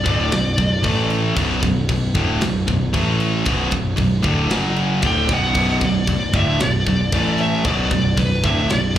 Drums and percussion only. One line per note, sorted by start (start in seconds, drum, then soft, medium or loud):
0.06 kick loud
0.06 crash medium
0.32 snare loud
0.32 crash medium
0.58 kick medium
0.58 crash medium
0.83 kick loud
0.83 crash medium
1.10 crash medium
1.37 kick loud
1.37 crash medium
1.63 kick loud
1.63 crash medium
1.89 kick medium
1.89 crash medium
2.15 kick loud
2.15 crash medium
2.41 snare loud
2.41 crash medium
2.68 kick loud
2.68 crash medium
2.94 kick loud
2.94 crash medium
3.20 crash medium
3.45 kick loud
3.45 crash medium
3.71 kick loud
3.71 crash medium
3.97 kick loud
3.97 crash medium
4.23 kick loud
4.23 crash medium
4.50 snare loud
4.50 crash medium
4.76 crash medium
5.02 kick loud
5.02 crash medium
5.29 kick loud
5.29 crash medium
5.54 kick loud
5.54 crash medium
5.81 kick loud
5.81 crash medium
6.07 kick loud
6.07 crash medium
6.33 kick loud
6.33 crash medium
6.60 snare loud
6.60 crash medium
6.87 kick medium
6.87 crash medium
7.12 kick loud
7.12 crash medium
7.38 crash medium
7.64 kick loud
7.64 crash medium
7.91 kick loud
7.91 crash medium
8.17 kick loud
8.17 crash medium
8.44 kick loud
8.44 crash medium
8.70 snare loud
8.70 crash medium